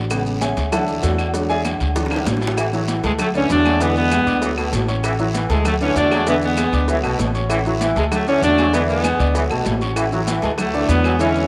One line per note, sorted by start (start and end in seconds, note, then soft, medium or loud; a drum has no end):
0.00 0.51 A1 medium
0.10 0.54 C#3 medium
0.10 0.55 G#3 medium
0.10 0.55 B3 medium
0.10 cowbell loud
0.10 high conga soft
0.10 low agogo loud
0.10 long guiro medium
0.10 claves medium
0.10 maracas medium
0.26 high conga soft
0.26 maracas soft
0.41 0.70 G#4 medium
0.41 0.70 C#5 medium
0.41 0.70 E5 medium
0.41 0.70 G#5 medium
0.41 cowbell medium
0.41 high conga medium
0.41 low timbale medium
0.41 low agogo medium
0.41 short guiro medium
0.41 maracas medium
0.57 1.00 D2 loud
0.57 cowbell medium
0.57 high conga soft
0.57 short guiro medium
0.57 maracas soft
0.72 1.16 E3 medium
0.72 1.16 F#3 medium
0.72 1.17 D4 medium
0.72 1.01 A4 medium
0.72 1.01 E5 medium
0.72 1.01 F#5 medium
0.72 1.01 A5 loud
0.72 cowbell loud
0.72 high conga soft
0.72 low conga medium
0.72 low agogo loud
0.72 long guiro medium
0.72 claves medium
0.72 maracas medium
0.88 low agogo medium
0.88 maracas soft
1.03 1.75 E2 loud
1.03 1.46 F#4 medium
1.03 1.32 A4 medium
1.03 1.46 D5 medium
1.03 1.46 F#5 medium
1.03 cowbell medium
1.03 high conga soft
1.03 low timbale loud
1.03 low agogo medium
1.03 short guiro medium
1.03 maracas medium
1.18 low agogo loud
1.18 short guiro medium
1.18 claves medium
1.18 maracas soft
1.33 1.92 F#3 medium
1.33 1.92 G#3 medium
1.33 1.93 D4 medium
1.33 cowbell loud
1.33 high conga soft
1.33 long guiro medium
1.33 maracas medium
1.49 1.59 G#4 medium
1.49 1.59 D5 medium
1.49 1.59 E5 medium
1.49 1.59 G#5 loud
1.49 high conga soft
1.49 maracas soft
1.65 cowbell medium
1.65 high conga loud
1.65 low timbale medium
1.65 low agogo loud
1.65 short guiro medium
1.65 claves medium
1.65 maracas medium
1.80 2.23 D2 medium
1.80 low agogo medium
1.80 short guiro medium
1.80 maracas soft
1.95 2.39 E3 medium
1.95 2.40 F#3 medium
1.95 2.40 D4 medium
1.95 cowbell loud
1.95 high bongo medium
1.95 high conga soft
1.95 long guiro medium
1.95 maracas medium
2.06 high bongo medium
2.11 high conga soft
2.11 high timbale loud
2.11 low agogo loud
2.11 claves medium
2.11 maracas soft
2.16 low bongo loud
2.26 2.98 A1 medium
2.26 cowbell medium
2.26 low bongo medium
2.26 high conga medium
2.26 low timbale medium
2.26 low agogo medium
2.26 short guiro medium
2.26 maracas medium
2.37 low bongo medium
2.41 low timbale loud
2.41 short guiro medium
2.41 maracas soft
2.47 low bongo loud
2.57 2.66 E3 medium
2.57 cowbell loud
2.57 high conga soft
2.57 low agogo loud
2.57 long guiro medium
2.57 claves medium
2.57 maracas medium
2.73 2.98 E3 medium
2.73 2.81 F#3 medium
2.73 2.98 E4 medium
2.73 2.98 E5 medium
2.73 high conga soft
2.73 maracas soft
2.88 3.13 E3 medium
2.88 cowbell medium
2.88 high conga loud
2.88 low timbale medium
2.88 low agogo medium
2.88 short guiro medium
2.88 maracas medium
3.03 3.47 D2 loud
3.03 3.12 E3 medium
3.03 3.12 G#3 medium
3.03 3.29 A3 medium
3.03 3.29 A4 medium
3.03 3.29 A5 medium
3.03 cowbell medium
3.03 short guiro medium
3.03 maracas soft
3.19 3.28 F#3 medium
3.19 3.28 A3 medium
3.19 cowbell loud
3.19 high conga soft
3.19 low conga medium
3.19 low agogo loud
3.19 long guiro medium
3.19 claves medium
3.19 maracas medium
3.34 3.60 D3 medium
3.34 3.51 E3 medium
3.34 3.50 A3 medium
3.34 3.50 C#4 loud
3.34 3.60 D4 medium
3.34 3.60 D5 medium
3.34 high conga soft
3.34 low agogo medium
3.34 maracas soft
3.49 4.21 E2 loud
3.49 3.79 A3 medium
3.49 3.79 D4 loud
3.49 cowbell medium
3.49 high conga soft
3.49 low timbale loud
3.49 low agogo loud
3.49 short guiro medium
3.49 maracas medium
3.65 3.74 F#3 medium
3.65 3.78 G#3 medium
3.65 3.78 G#4 medium
3.65 3.78 G#5 medium
3.65 high conga medium
3.65 low agogo loud
3.65 short guiro medium
3.65 claves medium
3.65 maracas soft
3.80 4.06 D3 medium
3.80 4.16 E3 loud
3.80 3.97 G#3 medium
3.80 3.97 B3 medium
3.80 4.06 D4 medium
3.80 4.06 D5 medium
3.80 cowbell loud
3.80 long guiro medium
3.80 maracas medium
3.96 4.55 G#3 medium
3.96 4.54 B3 loud
3.96 high conga soft
3.96 maracas soft
4.11 4.24 G#3 medium
4.11 4.24 G#4 medium
4.11 4.24 G#5 medium
4.11 cowbell medium
4.11 high conga loud
4.11 low timbale medium
4.11 low agogo loud
4.11 short guiro medium
4.11 claves medium
4.11 maracas medium
4.26 4.70 D2 medium
4.26 4.39 D4 medium
4.26 4.39 D5 medium
4.26 4.39 D6 medium
4.26 low agogo medium
4.26 short guiro medium
4.26 maracas soft
4.42 4.50 E3 medium
4.42 4.54 F#3 medium
4.42 4.55 F#4 medium
4.42 4.55 F#5 medium
4.42 cowbell loud
4.42 high conga soft
4.42 long guiro medium
4.42 maracas medium
4.57 4.82 B2 medium
4.57 4.82 A3 medium
4.57 4.82 A4 medium
4.57 4.83 A5 medium
4.57 high conga soft
4.57 low agogo loud
4.57 claves medium
4.57 maracas soft
4.73 5.44 A1 loud
4.73 cowbell medium
4.73 high conga medium
4.73 low timbale loud
4.73 low agogo medium
4.73 short guiro medium
4.73 maracas medium
4.88 5.13 C#4 medium
4.88 5.13 C#5 medium
4.88 5.14 C#6 medium
4.88 high conga soft
4.88 short guiro medium
4.88 maracas soft
5.03 5.12 E3 medium
5.03 cowbell loud
5.03 high conga soft
5.03 low agogo loud
5.03 long guiro medium
5.03 claves medium
5.03 maracas medium
5.19 5.44 E3 medium
5.19 5.27 F#3 medium
5.19 5.44 E4 medium
5.19 5.45 E5 medium
5.19 high conga soft
5.19 maracas soft
5.34 5.59 E3 medium
5.34 cowbell medium
5.34 high conga loud
5.34 low timbale medium
5.34 low agogo medium
5.34 short guiro medium
5.34 maracas medium
5.49 5.93 D2 loud
5.49 5.65 E3 medium
5.49 5.65 G#3 medium
5.49 5.75 A3 medium
5.49 5.75 A4 medium
5.49 5.75 A5 medium
5.49 cowbell medium
5.49 high conga soft
5.49 short guiro medium
5.49 maracas soft
5.65 5.73 F#3 medium
5.65 5.73 A3 medium
5.65 cowbell loud
5.65 high conga soft
5.65 low conga medium
5.65 low agogo loud
5.65 long guiro medium
5.65 claves medium
5.65 maracas medium
5.81 6.06 D3 medium
5.81 5.97 E3 medium
5.81 5.96 A3 medium
5.81 5.96 C#4 loud
5.81 6.06 D4 medium
5.81 6.06 D5 medium
5.81 low agogo medium
5.81 maracas soft
5.95 6.67 E2 medium
5.95 6.25 A3 medium
5.95 6.25 D4 loud
5.95 cowbell medium
5.95 high conga soft
5.95 low timbale loud
5.95 low agogo loud
5.95 short guiro medium
5.95 maracas medium
6.11 6.19 F#3 medium
6.11 6.24 G#3 medium
6.11 6.24 G#4 medium
6.11 6.24 G#5 medium
6.11 high conga medium
6.11 low agogo loud
6.11 short guiro medium
6.11 claves medium
6.11 maracas soft
6.27 6.52 D3 medium
6.27 6.62 E3 medium
6.27 6.35 G#3 medium
6.27 6.35 B3 medium
6.27 6.52 D4 medium
6.27 6.52 D5 medium
6.27 cowbell loud
6.27 high conga soft
6.27 long guiro medium
6.27 maracas medium
6.42 7.01 G#3 medium
6.42 7.01 B3 medium
6.42 high conga soft
6.42 maracas soft
6.57 6.70 G#3 medium
6.57 6.70 G#4 medium
6.57 6.71 G#5 medium
6.57 cowbell medium
6.57 high conga medium
6.57 low timbale medium
6.57 low agogo loud
6.57 short guiro medium
6.57 claves medium
6.57 maracas medium
6.73 7.01 D2 loud
6.73 6.86 D4 medium
6.73 6.86 D5 medium
6.73 6.86 D6 medium
6.73 low agogo medium
6.73 short guiro medium
6.73 maracas soft
6.88 6.97 E3 medium
6.88 7.01 F#3 medium
6.88 7.01 F#4 medium
6.88 7.01 F#5 medium
6.88 cowbell loud
6.88 high conga soft
6.88 long guiro medium
6.88 maracas medium
7.03 7.18 B1 medium
7.03 7.28 B2 medium
7.03 7.29 A3 medium
7.03 7.29 A4 medium
7.03 7.29 A5 medium
7.03 high conga soft
7.03 low agogo loud
7.03 claves medium
7.03 maracas soft
7.19 7.91 A1 loud
7.19 cowbell medium
7.19 high conga medium
7.19 low timbale medium
7.19 low agogo medium
7.19 short guiro medium
7.19 maracas medium
7.34 7.60 C#4 medium
7.34 7.60 C#5 medium
7.34 7.60 C#6 medium
7.34 short guiro medium
7.34 maracas soft
7.49 7.58 E3 medium
7.49 cowbell loud
7.49 high conga soft
7.49 low agogo loud
7.49 long guiro medium
7.49 claves medium
7.49 maracas medium
7.65 7.91 E3 medium
7.65 7.73 F#3 medium
7.65 7.91 E4 medium
7.65 7.91 E5 medium
7.65 high conga soft
7.65 maracas soft
7.80 8.05 E3 medium
7.80 cowbell medium
7.80 high conga loud
7.80 low timbale medium
7.80 low agogo medium
7.80 short guiro medium
7.80 maracas medium
7.96 8.39 D2 loud
7.96 8.05 E3 medium
7.96 8.05 G#3 medium
7.96 8.22 A3 medium
7.96 8.22 A4 medium
7.96 8.22 A5 medium
7.96 cowbell medium
7.96 high conga soft
7.96 short guiro medium
7.96 maracas soft
8.11 8.27 F#3 medium
8.11 8.27 A3 medium
8.11 cowbell loud
8.11 high conga soft
8.11 low conga medium
8.11 low agogo loud
8.11 long guiro medium
8.11 claves medium
8.11 maracas medium
8.26 8.52 D3 medium
8.26 8.43 E3 medium
8.26 8.42 A3 medium
8.26 8.42 C#4 loud
8.26 8.52 D4 medium
8.26 8.53 D5 medium
8.26 low agogo medium
8.26 maracas soft
8.42 9.14 E2 medium
8.42 8.72 A3 medium
8.42 8.72 D4 loud
8.42 cowbell medium
8.42 high conga soft
8.42 low timbale medium
8.42 low agogo medium
8.42 short guiro medium
8.42 maracas medium
8.58 8.66 F#3 medium
8.58 8.71 G#3 medium
8.58 8.71 G#4 medium
8.58 8.71 G#5 medium
8.58 high conga medium
8.58 low agogo loud
8.58 short guiro medium
8.58 claves medium
8.58 maracas soft
8.73 8.98 D3 medium
8.73 9.08 E3 loud
8.73 8.81 G#3 medium
8.73 8.81 B3 medium
8.73 8.99 D4 medium
8.73 8.99 D5 medium
8.73 cowbell loud
8.73 long guiro medium
8.73 maracas medium
8.88 9.47 G#3 medium
8.88 9.47 B3 loud
8.88 high conga soft
8.88 maracas soft
9.04 9.17 G#3 medium
9.04 9.17 G#4 medium
9.04 9.17 G#5 medium
9.04 cowbell medium
9.04 high conga loud
9.04 low timbale medium
9.04 low agogo loud
9.04 short guiro medium
9.04 claves medium
9.04 maracas medium
9.19 9.48 D2 loud
9.19 9.32 D4 medium
9.19 9.32 D5 medium
9.19 9.32 D6 medium
9.19 low agogo medium
9.19 short guiro medium
9.19 maracas soft
9.34 9.43 E3 medium
9.34 9.47 F#3 medium
9.34 9.47 F#4 medium
9.34 9.48 F#5 medium
9.34 cowbell loud
9.34 high conga soft
9.34 long guiro medium
9.34 maracas medium
9.50 9.65 B1 medium
9.50 9.75 B2 medium
9.50 9.76 A3 medium
9.50 9.76 A4 medium
9.50 9.76 A5 medium
9.50 high conga soft
9.50 low agogo loud
9.50 claves medium
9.50 maracas soft
9.65 10.37 A1 medium
9.65 cowbell medium
9.65 high conga medium
9.65 low timbale loud
9.65 low agogo medium
9.65 short guiro medium
9.65 maracas medium
9.81 10.06 C#4 medium
9.81 10.07 C#5 medium
9.81 10.07 C#6 medium
9.81 high conga soft
9.81 short guiro medium
9.81 maracas soft
9.96 10.04 E3 medium
9.96 cowbell loud
9.96 high conga soft
9.96 low agogo loud
9.96 long guiro medium
9.96 claves medium
9.96 maracas medium
10.12 10.37 E3 medium
10.12 10.20 F#3 medium
10.12 10.37 E4 medium
10.12 10.38 E5 medium
10.12 high conga soft
10.12 maracas soft
10.27 10.51 E3 medium
10.27 cowbell medium
10.27 high conga loud
10.27 low timbale medium
10.27 low agogo medium
10.27 short guiro medium
10.27 maracas medium
10.42 10.86 D2 loud
10.42 10.51 E3 medium
10.42 10.50 G#3 medium
10.42 10.68 A3 medium
10.42 10.68 A4 medium
10.42 10.68 A5 medium
10.42 cowbell medium
10.42 high conga soft
10.42 short guiro medium
10.42 maracas soft
10.58 10.88 F#3 medium
10.58 10.87 A3 medium
10.58 cowbell loud
10.58 high conga soft
10.58 low conga medium
10.58 low agogo loud
10.58 long guiro medium
10.58 claves medium
10.58 maracas medium
10.73 10.99 D3 medium
10.73 10.90 E3 medium
10.73 10.99 D4 medium
10.73 10.99 D5 loud
10.73 low agogo medium
10.73 maracas soft
10.88 11.47 E2 loud
10.88 11.18 F#3 medium
10.88 11.18 B3 loud
10.88 cowbell medium
10.88 high conga soft
10.88 low timbale medium
10.88 low agogo medium
10.88 short guiro medium
10.88 maracas medium
11.04 11.12 F#3 medium
11.04 11.17 G#3 medium
11.04 11.17 G#4 medium
11.04 11.17 G#5 medium
11.04 low agogo loud
11.04 short guiro medium
11.04 claves medium
11.04 maracas soft
11.19 11.45 D3 medium
11.19 11.47 E3 loud
11.19 11.47 G#3 medium
11.19 11.47 C#4 loud
11.19 11.45 E4 loud
11.19 11.45 E5 medium
11.19 cowbell loud
11.19 high conga soft
11.19 long guiro medium
11.19 maracas medium
11.35 high conga soft
11.35 maracas soft